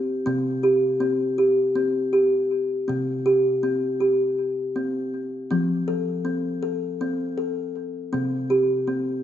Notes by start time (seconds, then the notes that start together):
Already playing: C3 C4
0.26 C3 C4
0.63 G4
1.00 C4
1.38 G4
1.75 C4
2.13 G4
2.88 C3 C4
3.26 G4
3.63 C4
4.00 G4
4.76 C4
5.51 F3 C4
5.88 A4
6.25 C4
6.63 A4
7.01 C4
7.38 A4
8.13 C3 C4
8.50 G4
8.87 C4